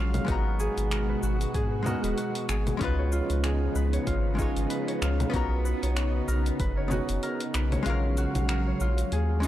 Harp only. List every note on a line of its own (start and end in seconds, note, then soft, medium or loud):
0.00 0.34 F4 medium
0.00 0.91 A#4 medium
0.00 1.56 C#5 medium
0.14 0.34 F5 medium
0.28 1.22 F#4 medium
0.60 1.54 G#4 medium
0.92 1.15 A#4 medium
1.09 1.92 B4 medium
1.23 2.17 F#4 loud
1.55 2.48 G#4 medium
1.86 2.10 A#4 loud
2.04 2.80 B4 medium
2.18 3.18 F#4 loud
2.49 3.43 G#4 medium
2.81 3.75 B4 medium
2.99 3.93 C#5 medium
3.12 4.06 F4 medium
3.44 4.38 G#4 medium
3.75 4.69 B4 loud
3.93 4.87 C#5 medium
4.07 5.01 F4 medium
4.38 6.66 G#4 medium
4.70 5.39 B4 loud
4.88 5.82 C#5 medium
5.02 6.02 F4 loud
5.33 5.71 A#4 medium
5.65 6.34 B4 loud
5.82 6.77 C#5 medium
5.96 6.91 F#4 medium
6.28 6.66 A#4 loud
6.60 7.29 B4 medium
6.77 7.72 C#5 medium
6.91 7.92 F#4 medium
7.23 7.60 A#4 loud
7.54 8.55 B4 loud
7.72 8.67 C#5 medium
7.86 8.24 F4 medium
8.18 8.87 F#4 loud
8.49 9.47 A#4 medium
8.67 9.47 C#5 medium
8.81 9.47 F4 loud
9.13 9.47 G#4 loud